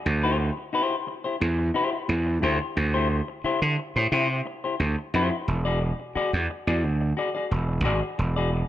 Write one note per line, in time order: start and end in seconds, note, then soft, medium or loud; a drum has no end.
0.06 0.49 D2 loud
0.06 muted clean electric guitar stroke soft
0.23 0.38 E4 medium
0.23 0.38 G4 medium
0.23 0.39 C5 medium
0.39 muted clean electric guitar stroke soft
0.57 muted clean electric guitar stroke soft
0.73 0.94 E4 medium
0.73 0.95 G4 medium
0.73 0.95 C5 medium
1.07 muted clean electric guitar stroke soft
1.24 1.36 E4 soft
1.24 1.36 G4 soft
1.24 1.35 C5 medium
1.41 1.70 E2 medium
1.41 muted clean electric guitar stroke soft
1.59 muted clean electric guitar stroke soft
1.74 1.96 E4 medium
1.74 1.93 G4 medium
1.74 1.91 C5 medium
1.93 muted clean electric guitar stroke soft
2.08 2.37 E2 medium
2.08 muted clean electric guitar stroke soft
2.27 muted clean electric guitar stroke soft
2.42 2.58 D2 medium
2.42 2.57 E4 medium
2.42 2.58 G4 medium
2.42 2.58 C5 medium
2.60 muted clean electric guitar stroke soft
2.76 3.20 D2 loud
2.76 muted clean electric guitar stroke soft
2.94 3.08 E4 medium
2.94 3.08 G4 medium
2.94 3.07 C5 medium
3.11 muted clean electric guitar stroke soft
3.28 muted clean electric guitar stroke soft
3.44 3.59 E4 medium
3.44 3.59 G4 medium
3.44 3.60 C5 medium
3.44 muted slap bass stroke soft
3.62 3.76 D3 medium
3.78 muted clean electric guitar stroke soft
3.96 4.09 A2 medium
3.96 4.07 E4 soft
3.96 4.07 G4 medium
3.96 4.06 C5 medium
4.12 4.40 C3 medium
4.12 4.27 E4 medium
4.12 4.27 G4 medium
4.12 4.28 C5 medium
4.46 muted clean electric guitar stroke soft
4.64 4.75 E4 soft
4.64 4.75 G4 medium
4.64 4.74 C5 medium
4.80 4.95 D2 medium
4.80 muted clean electric guitar stroke soft
4.99 muted clean electric guitar stroke soft
5.14 5.29 F2 medium
5.14 5.35 E4 medium
5.14 5.32 G4 medium
5.14 5.30 C5 medium
5.31 muted clean electric guitar stroke medium
5.47 5.91 E1 loud
5.47 muted clean electric guitar stroke soft
5.65 5.79 F#4 medium
5.65 5.79 G#4 medium
5.65 5.78 D5 medium
5.81 muted clean electric guitar stroke soft
6.00 muted clean electric guitar stroke soft
6.15 6.30 F#4 medium
6.15 6.30 G#4 medium
6.15 6.31 D5 medium
6.15 muted slap bass stroke medium
6.33 6.47 E2 medium
6.50 muted clean electric guitar stroke soft
6.67 6.83 E2 medium
6.67 6.78 F#4 medium
6.67 6.78 G#4 medium
6.67 6.78 D5 medium
6.83 7.12 D2 loud
6.83 muted clean electric guitar stroke soft
7.01 muted clean electric guitar stroke soft
7.17 7.28 F#4 medium
7.17 7.29 G#4 medium
7.17 7.29 D5 medium
7.35 7.46 F#4 medium
7.35 7.46 G#4 medium
7.35 7.45 D5 medium
7.51 7.80 E1 medium
7.51 muted clean electric guitar stroke soft
7.69 muted clean electric guitar stroke soft
7.84 8.00 G#1 medium
7.84 7.99 F#4 medium
7.84 8.00 G#4 medium
7.84 8.00 D5 medium
8.03 muted clean electric guitar stroke medium
8.18 8.62 E1 loud
8.18 muted clean electric guitar stroke soft
8.36 8.50 F#4 medium
8.36 8.50 G#4 medium
8.36 8.50 D5 medium
8.53 muted clean electric guitar stroke soft